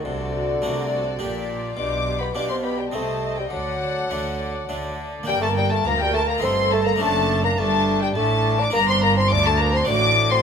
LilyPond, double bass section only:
\new Staff \with { instrumentName = "Double bass section" } { \clef bass \time 3/4 \key g \minor \tempo 4 = 104 c,4 c,4 bes,,4 | b,,4 b,,4 c,4 | d,4 d,4 d,4 | g,,4 d,4 g,,4 |
fis,,4 g,,4 a,,4 | g,,4 d,4 a,,4 | }